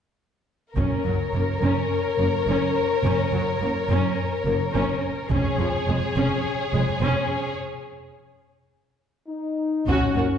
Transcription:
0.74 F#1 F#2 C#4 A#4 C#5, taiko
1.05 F#1 F#2 F#3
1.34 F#1 F#2 A#3
1.62 F#1 F#2 C#4
2.19 F#1 F#2 A#3
2.47 F#1 F#2 C#4
3.04 F#1 F#2 C#4
3.32 F#1 F#2 F#3
3.61 F#1 F#2 A#3
3.89 F#1 F#2 C#4
4.45 F#1 F#2 A#3
4.73 F#1 F#2 C#4
5.31 F1 F2 C#4 G#4 C#5, taiko
5.59 F1 F2 F3
5.88 F1 F2 G#3
6.16 F1 F2 C#4
6.73 F1 F2 G#3
7.00 F1 F2 C#4
9.27 D#4
9.87 F#1 F#2 C#4 F#4, taiko
10.16 F#1 F#2 F#4 A#4 C#5

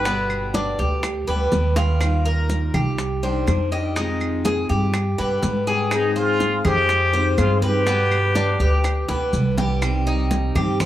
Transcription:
Already playing: G1 B4
0.05 B2 D3 G3 B3 G4, high bongo, high conga, maracas
0.30 high conga, claves, maracas
0.54 D4, high bongo, high conga, maracas
0.79 D2 G4, high bongo, high conga, maracas
1.03 muted steel-string acoustic guitar stroke, high bongo, high conga, claves, maracas
1.27 D2 D3 G3 B3 G4 B4, high bongo, high conga, maracas
1.52 D#2 D3 G3 B3 G4, high bongo, low bongo, high conga, maracas
1.76 D3 G3 B3 F4 G4, high bongo, high conga, maracas
2.00 D#3 G3 D#4 F4, high bongo, high conga, claves, maracas
2.25 A#4, high conga, maracas
2.49 high bongo, high conga, maracas
2.74 C2 G4, high bongo, high conga, low conga, claves, maracas
2.98 muted steel-string acoustic guitar stroke, high bongo, high conga, maracas
3.23 D#3 G3 D4 G4 C5, high bongo, high conga, maracas
3.47 F2 D#3 G3 D4 G4, high bongo, low bongo, high conga, claves, maracas
3.72 D#3 G3 D4 G4 D#5, high bongo, maracas
3.96 C3 D#3 G#3 C4 D#4 F4, high bongo, high conga, maracas
4.21 high conga, claves, maracas
4.45 G#4, high bongo, high conga, maracas
4.69 G2 G4, high bongo, high conga, maracas
4.94 muted steel-string acoustic guitar stroke, high bongo, high conga, claves, maracas
5.18 G2 D3 G3 B3 G4 B4, high bongo, high conga, maracas
5.43 G#2 D3 G3 B3 G4, high bongo, low bongo, high conga, maracas
5.67 D3 G3 B3 G4 G#4, high bongo, maracas
5.91 D#3 G#3 C4 D#4 G#4, high bongo, high conga, claves, maracas
6.16 F4 G#4 C5, high conga, maracas
6.40 high bongo, high conga, maracas
6.65 F2 G#3 G4 C5, high bongo, high conga, low conga, claves, maracas
6.89 muted steel-string acoustic guitar stroke, high bongo, high conga, maracas
7.13 D#3 G#3 C4 F4 C5, high bongo, high conga, maracas
7.37 G2 D#3 G#3 C4 F4 G#4, high bongo, low bongo, high conga, claves, maracas
7.62 D#3 G#3 C4 F4 G4 B4, high bongo, high conga, maracas
7.86 B2 D3 G3 B3 G4, high bongo, high conga, maracas
8.11 high conga, claves, maracas
8.35 D4, high bongo, high conga, maracas
8.59 D2 G4, high bongo, high conga, maracas
8.84 muted steel-string acoustic guitar stroke, high bongo, high conga, claves, maracas
9.08 D2 D3 G3 B3 G4 B4, high bongo, high conga, maracas
9.33 C2 D3 G3 B3 G4, high conga, maracas
9.57 D3 G3 B3 G4, low bongo, low conga, maracas
9.82 C3 D#3 G3 C4 G4, high bongo, high conga, claves, maracas
10.07 D#4, high bongo, high conga, maracas
10.31 high bongo, high conga, maracas
10.55 G2 D#3 G3 C4 G4, high conga, low conga, claves, maracas
10.80 C5, muted steel-string acoustic guitar stroke, high bongo, high conga, low conga, maracas

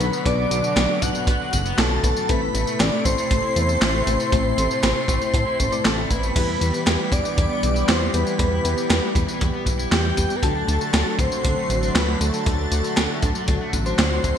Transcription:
Already playing: D3 F#3 F#4 B4 B5
0.00 B1 B2 F#3 B3 D4 B4, closed hi-hat, tambourine
0.13 B2, tambourine
0.25 B1 B2 F#3 B3 D4 B4 D5 D6, kick, closed hi-hat, tambourine
0.38 B3
0.51 B1 B2, closed hi-hat, tambourine
0.64 B2, tambourine
0.76 B1 B3, snare, clap, closed hi-hat, tambourine
0.89 B2
1.02 B1 B2 F#5 F#6, kick, closed hi-hat, tambourine
1.15 B2, tambourine
1.27 B1 B3, kick, closed hi-hat, tambourine
1.40 F#3
1.53 F#1 B2, kick, closed hi-hat, tambourine
1.66 B3, tambourine
1.78 B1 B2 A4 A5, snare, clap, closed hi-hat, tambourine
1.91 B2
2.03 B1 B2 F#3 B3 D4 B4, kick, closed hi-hat, tambourine
2.16 B2, tambourine
2.29 A1 A2 C3 A3 C4 E4 A4 B4 B5, kick, closed hi-hat, tambourine
2.42 A4
2.54 A1 A3, closed hi-hat, tambourine
2.67 A3, tambourine
2.79 A1 A4 D5 D6, snare, clap, closed hi-hat, tambourine
2.92 A3
3.05 A1 A3 C5 C6, kick, closed hi-hat, tambourine
3.18 A3, tambourine
3.30 A1 A4, kick, closed hi-hat, tambourine
3.43 E4
3.56 E2 A3, closed hi-hat, tambourine
3.69 A4, tambourine
3.81 A1 A3, snare, clap, closed hi-hat, tambourine
3.94 A3
4.07 A1 A2 A3 C4 E4 B4, closed hi-hat, tambourine
4.20 A3, tambourine
4.32 A1 A2 A3 C4 E4 C5, kick, closed hi-hat, tambourine
4.45 A4
4.58 A1 A3, closed hi-hat, tambourine
4.71 A3, tambourine
4.83 A1 A4, snare, clap, closed hi-hat, tambourine
4.96 A3
5.08 A1 A3, kick, closed hi-hat, tambourine
5.21 A3, tambourine
5.34 A2 A4, kick, closed hi-hat, tambourine
5.47 E4
5.60 A1 A2 A3 C4 E4 B4, kick, closed hi-hat, tambourine
5.72 A2 A3 C4 E4 A4 D5, tambourine
5.85 A1 A3 A4 A5, snare, clap, closed hi-hat, tambourine
5.98 A3
6.10 A1 E4 B4 B5, kick, closed hi-hat, tambourine
6.23 A3, tambourine
6.36 E2 E3 G3 B3 E4 G4 B4, kick, closed hi-hat, tambourine, crash
6.48 E4
6.61 E2 E3, closed hi-hat, tambourine
6.74 E3, tambourine
6.87 E2 E4, snare, clap, closed hi-hat, tambourine
6.99 E3
7.12 E2 E3 D5 D6, kick, closed hi-hat, tambourine
7.25 E3, tambourine
7.38 E2 E4, kick, closed hi-hat, tambourine
7.50 B3
7.63 B1 E3, closed hi-hat, tambourine
7.76 E4, tambourine
7.88 E2 E3 C5 C6, snare, clap, closed hi-hat, tambourine
8.01 E3
8.14 E2 E3 G3 B3 E4 B4 B5, closed hi-hat, tambourine
8.27 E3, tambourine
8.39 E2 E3 G3 B3 E4 B4, kick, closed hi-hat, tambourine
8.52 E4
8.65 E2 E3, closed hi-hat, tambourine
8.78 E3, tambourine
8.90 E2 E4, snare, clap, closed hi-hat, tambourine
9.03 E3
9.15 E2 E3, kick, closed hi-hat, tambourine
9.28 E3, tambourine
9.41 E2 E4, kick, closed hi-hat, tambourine
9.54 B3
9.66 B1 E3, kick, closed hi-hat, tambourine
9.79 E4, tambourine
9.92 E2 E3 G4 G5, snare, clap, closed hi-hat, tambourine
10.04 E3
10.17 E2 E3 G3 B3 E4 B4, kick, closed hi-hat, tambourine
10.30 E3, tambourine
10.36 B4 B5
10.43 D2 D3 F#3 A3 D4 F#4 A4 A5, kick, closed hi-hat, tambourine
10.55 D4
10.68 D2 D3, closed hi-hat, tambourine
10.81 D3, tambourine
10.93 D2 D4, snare, clap, closed hi-hat, tambourine
11.06 D3
11.19 D2 D3 C5 C6, kick, closed hi-hat, tambourine
11.32 D3, tambourine
11.44 D2 D4, kick, closed hi-hat, tambourine
11.57 A3
11.70 A1 D3, closed hi-hat, tambourine
11.83 D4, tambourine
11.95 D2 D3 B4 B5, snare, clap, closed hi-hat, tambourine
12.08 D3
12.20 D2 D3 F#3 A3 D4 A4 A5, closed hi-hat, tambourine
12.33 D3, tambourine
12.46 D2 D3 F#3 A3 D4 A4, kick, closed hi-hat, tambourine
12.59 D4
12.72 D2 D3, closed hi-hat, tambourine
12.84 D3, tambourine
12.97 D2 D4, snare, clap, closed hi-hat, tambourine
13.10 D3
13.22 D2 D3, kick, closed hi-hat, tambourine
13.35 D3, tambourine
13.48 D2 D4, kick, closed hi-hat, tambourine
13.61 A3
13.73 A1 D3 F#3 A3 D4 A4, kick, closed hi-hat, tambourine
13.86 F#3 A3 D4 C5, tambourine
13.99 D2 D3 C5 C6, snare, clap, closed hi-hat, tambourine
14.11 D3
14.24 D2 D3, kick, closed hi-hat, tambourine

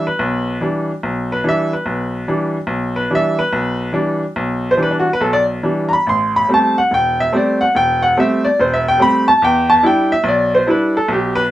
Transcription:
0.07 B4
0.19 B1
0.61 E3 G3 D4
1.03 B1
1.32 B4
1.44 E3 G3 D4
1.49 E5
1.73 B4
1.86 B1
2.28 E3 G3 D4
2.67 B1
2.96 B4
3.10 E3 G3 D4
3.15 E5
3.39 B4
3.53 B1
3.93 E3 G3 D4
4.36 B1
4.71 C5
4.77 E3 G3 D4
4.83 B4
4.91 D4
5.00 F#4
5.13 B4
5.21 B1 A4
5.33 D5
5.63 E3 G3 D4
5.89 A#5
5.93 B5
6.07 A1 C6
6.36 B5
6.48 G3 A3 C4
6.54 A5
6.78 F#5
6.91 E1 G5
7.20 E5
7.32 G3 A3 C4
7.36 D5
7.61 F#5
7.75 E1 G5
8.02 F#5
8.17 G3 A3 C4 E5
8.45 D5
8.59 E1 C5
8.74 E5
8.88 G5
8.98 G3 A3 C4
9.02 B5
9.28 A5
9.42 E2 G5
9.70 A5
9.83 G3 D4 E4 G5
10.12 E5
10.24 B1
10.29 D5
10.55 C5
10.67 G3 D4 E4 B4
10.97 A4
11.08 B1
11.13 G4
11.35 B4

